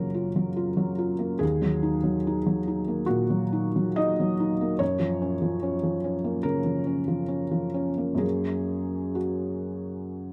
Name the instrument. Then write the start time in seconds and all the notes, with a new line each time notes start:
felt piano
Already playing: F#2 C#3 F#3 A#3 F4 A#4 C#5
0.14 F4
0.36 F#3
0.57 F4
0.77 F#3
0.98 F4
1.19 A#3
1.39 D#2 G#4
1.62 F#3
1.83 D#4
2.04 F#3
2.27 D#4
2.46 F#3
2.68 D#4
2.88 A#3
3.06 A#2 F#4
3.30 F#3
3.53 D#4
3.76 F#3
3.96 D#4 D#5
4.20 F#3
4.40 D#4
4.61 A#3
4.79 F#2 C#5
4.99 F3
5.22 C#4
5.42 F3
5.63 C#4
5.83 F3
6.04 C#4
6.24 A#3
6.43 C#3 A#4
6.64 F3
6.87 C#4
7.08 F3
7.28 C#4
7.51 F3
7.74 C#4
7.98 A#3
8.15 F#2 F#3 A#3 G#4
8.19 C#4
9.15 F#4